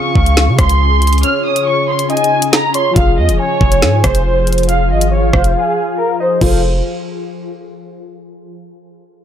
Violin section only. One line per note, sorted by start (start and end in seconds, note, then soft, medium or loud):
0.00 0.55 C#6 loud
0.58 1.19 C6 medium
1.23 1.44 F6 loud
1.45 1.65 D#6 medium
1.67 1.87 C#6 medium
1.89 2.09 C6 medium
2.09 2.50 G#5 medium
2.53 2.73 A#5 medium
2.74 2.95 C6 medium
2.96 3.16 F5 medium
3.18 3.38 D#5 medium
3.39 4.00 C#5 loud
4.04 4.65 C5 medium
4.69 4.89 F5 loud
4.91 5.11 D#5 medium
5.12 5.33 C#5 medium
5.34 5.54 C5 medium
5.55 5.96 G#4 medium
5.98 6.19 A#4 medium
6.20 6.41 C5 medium
6.42 6.62 C5 medium